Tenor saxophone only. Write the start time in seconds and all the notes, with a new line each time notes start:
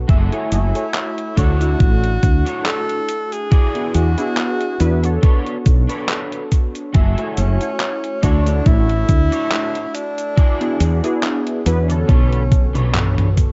0.52 E4
1.38 F#4
2.66 A4
3.33 G#4
3.95 F#4
7.38 C#4
8.24 D4
8.67 E4
9.94 D4
11.66 C#4